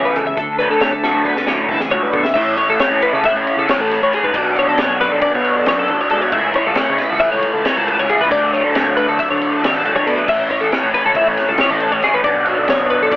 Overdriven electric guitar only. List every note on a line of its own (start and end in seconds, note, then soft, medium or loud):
0.00 0.23 C#3 medium
0.00 0.23 E3 medium
0.00 0.23 A3 medium
0.00 0.23 E4 medium
0.60 0.89 D3 medium
0.60 0.89 F#3 medium
0.60 0.89 A3 medium
0.60 0.88 D4 medium
1.04 1.33 D3 medium
1.04 1.33 F#3 medium
1.04 1.32 A3 medium
1.04 1.33 D4 medium
1.48 1.77 D3 medium
1.48 1.77 F#3 medium
1.48 1.77 A3 medium
1.48 1.76 D4 loud
1.91 2.21 D3 medium
1.91 2.21 F#3 medium
1.91 2.21 A3 medium
1.91 2.20 D4 medium
2.35 2.79 A2 medium
2.35 2.77 E3 loud
2.35 2.58 A3 loud
2.35 2.57 C#4 loud
2.35 2.56 E4 loud
2.57 2.79 A3 medium
2.57 2.79 C#4 medium
2.57 2.80 E4 medium
2.78 3.23 E3 medium
2.78 3.02 A3 medium
2.78 3.02 C#4 medium
2.78 2.99 E4 medium
3.01 3.68 A3 medium
3.01 3.69 C#4 medium
3.01 3.68 E4 medium
3.67 4.10 A2 medium
3.67 4.11 E3 medium
3.67 3.91 A3 loud
3.67 3.90 C#4 loud
3.67 3.88 E4 loud
3.89 4.12 A3 medium
3.89 4.12 C#4 medium
3.89 4.12 E4 medium
4.12 4.33 A2 medium
4.12 4.33 E3 loud
4.12 4.34 A3 loud
4.12 4.35 C#4 loud
4.12 4.34 E4 loud
4.34 4.77 B2 loud
4.34 4.56 F#3 loud
4.34 4.56 B3 loud
4.34 4.54 D4 loud
4.55 4.78 F#3 medium
4.55 4.79 B3 medium
4.55 4.79 D4 medium
4.78 5.22 B2 medium
4.78 5.00 F#3 medium
4.78 5.00 B3 medium
4.78 4.98 D4 medium
4.99 5.66 F#3 medium
4.99 5.67 B3 medium
4.99 5.67 D4 medium
5.67 6.08 B2 loud
5.67 5.88 F#3 medium
5.67 5.88 B3 loud
5.67 5.86 D4 loud
5.87 6.09 F#3 medium
5.87 6.09 B3 medium
5.87 6.10 D4 medium
6.09 6.30 B2 loud
6.09 6.31 F#3 loud
6.09 6.31 B3 loud
6.09 6.31 D4 loud
6.32 6.75 C#3 loud
6.32 6.55 E3 loud
6.32 6.55 A3 loud
6.32 6.53 E4 loud
6.54 6.76 E3 medium
6.54 6.77 A3 medium
6.54 6.78 E4 medium
6.77 7.20 C#3 medium
6.77 6.98 E3 medium
6.77 6.98 A3 medium
6.77 6.97 E4 medium
6.98 7.64 E3 medium
6.98 7.66 A3 medium
6.98 7.65 E4 medium
7.64 8.08 C#3 medium
7.64 7.87 E3 loud
7.64 7.88 A3 loud
7.64 7.86 E4 loud
7.87 8.09 E3 medium
7.87 8.10 A3 medium
7.87 8.09 E4 medium
8.09 8.29 C#3 loud
8.09 8.30 E3 loud
8.09 8.31 A3 loud
8.09 8.30 E4 loud
8.30 8.73 D3 medium
8.30 8.53 F#3 medium
8.30 8.53 A3 loud
8.30 8.51 D4 loud
8.52 8.73 F#3 medium
8.52 8.75 A3 medium
8.52 8.75 D4 medium
8.74 9.18 D3 medium
8.74 8.97 F#3 medium
8.74 8.97 A3 medium
8.74 8.95 D4 medium
8.96 9.62 F#3 medium
8.96 9.63 A3 medium
8.96 9.63 D4 medium
9.62 10.03 D3 loud
9.62 9.85 F#3 loud
9.62 9.85 A3 loud
9.62 9.83 D4 loud
9.85 10.04 F#3 medium
9.85 10.06 A3 medium
9.85 10.05 D4 medium
10.05 10.26 D3 loud
10.05 10.26 F#3 loud
10.05 10.28 A3 loud
10.05 10.27 D4 loud
10.27 10.71 A2 loud
10.27 10.70 E3 medium
10.27 10.51 A3 loud
10.27 10.50 C#4 loud
10.27 10.48 E4 loud
10.49 10.72 A3 medium
10.49 10.72 C#4 medium
10.49 10.72 E4 medium
10.71 11.15 E3 medium
10.71 10.95 A3 medium
10.71 10.94 C#4 medium
10.71 10.92 E4 medium
10.94 11.59 A3 medium
10.94 11.60 C#4 medium
10.94 11.59 E4 medium
11.59 12.02 A2 medium
11.59 12.02 E3 loud
11.59 11.83 A3 loud
11.59 11.82 C#4 loud
11.59 11.80 E4 loud
11.81 12.04 A3 medium
11.81 12.04 C#4 medium
11.81 12.04 E4 medium
12.03 12.23 A2 loud
12.03 12.24 E3 loud
12.03 12.25 A3 loud
12.03 12.25 C#4 loud
12.03 12.24 E4 loud
12.24 12.66 B2 medium
12.24 12.47 F#3 loud
12.24 12.46 B3 loud
12.24 12.44 D4 loud
12.46 12.67 F#3 medium
12.46 12.68 B3 medium
12.46 12.68 D4 medium
12.67 13.11 B2 medium
12.67 12.89 F#3 medium
12.67 12.90 B3 medium
12.67 12.88 D4 medium
12.89 13.16 F#3 medium
12.89 13.16 B3 medium
12.89 13.16 D4 medium